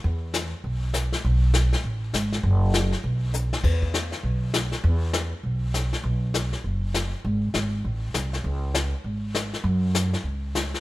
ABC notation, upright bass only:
X:1
M:4/4
L:1/8
Q:"Swing" 1/4=200
K:E
V:1 name="Upright bass" clef=bass
E,,4 B,,,4 | B,,,4 A,,,2 G,,,2 | F,,,4 B,,,4 | E,,4 B,,,4 |
E,,4 B,,,4 | B,,,4 F,,,4 | G,,,2 G,,,2 A,,,2 ^B,,,2 | C,,4 G,,,4 |
F,,4 C,,4 |]